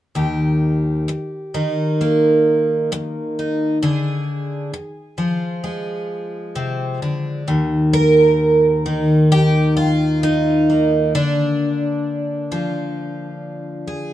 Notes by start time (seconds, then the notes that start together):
0.15 D#2 G4
1.08 muted twelve-string acoustic guitar stroke
1.54 D#3
2.01 A#3
2.92 muted twelve-string acoustic guitar stroke
3.39 D#4
3.83 D3 G#4
4.74 muted twelve-string acoustic guitar stroke
5.18 F3
5.64 G#3
6.55 C3
7.02 D3
7.48 D#2
7.93 A#4
8.86 D#3
9.32 G4
9.77 F4
10.23 D#4
10.70 A#3
11.15 D3 D4
12.52 F3
13.88 G#4